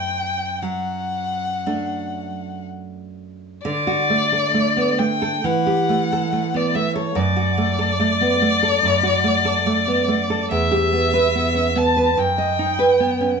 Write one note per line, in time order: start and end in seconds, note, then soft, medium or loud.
0.00 3.60 F#2 soft
0.00 0.64 G5 medium
0.62 2.26 F#3 soft
0.62 2.66 F#5 medium
1.66 3.60 A3 soft
1.66 3.60 D4 soft
3.65 5.40 D3 medium
3.65 5.00 D5 medium
3.87 4.23 F#4 soft
4.10 4.45 A3 soft
4.32 4.68 A4 soft
4.54 4.90 A3 soft
4.77 4.99 B3 soft
4.99 5.35 A3 soft
4.99 5.47 G5 medium
5.22 5.44 A4 soft
5.44 7.12 E3 medium
5.44 6.58 F#5 medium
5.66 6.02 G4 soft
5.89 6.24 A3 soft
6.12 6.46 A4 medium
6.33 6.66 A3 soft
6.54 6.75 B3 soft
6.54 6.77 D5 medium
6.75 7.08 A3 soft
6.75 6.96 E5 medium
6.96 7.16 A4 soft
6.96 7.17 C#5 medium
7.15 8.77 F#2 medium
7.15 10.50 D5 medium
7.36 7.70 F#4 soft
7.58 7.91 A3 soft
7.79 8.12 A4 soft
8.00 8.33 A3 soft
8.21 8.41 B3 soft
8.42 8.74 A3 soft
8.63 8.95 A4 soft
8.83 10.47 F#2 medium
9.03 9.37 F#4 soft
9.24 9.57 A3 soft
9.45 9.78 A4 medium
9.66 10.00 A3 soft
9.87 10.08 B3 soft
10.08 10.42 A3 soft
10.30 10.51 A4 soft
10.51 12.14 E2 medium
10.51 11.79 E5 medium
10.71 11.06 G4 soft
10.93 11.27 B3 soft
11.14 11.47 B4 soft
11.35 11.68 B3 soft
11.55 11.76 C#4 soft
11.75 12.09 B3 soft
11.75 12.20 A5 medium
11.97 12.17 B4 soft
12.17 13.40 F#2 medium
12.17 13.40 G5 medium
12.38 12.71 D#5 soft
12.59 12.92 D#4 soft
12.79 13.12 B4 soft
13.00 13.33 B3 soft
13.21 13.40 C#4 soft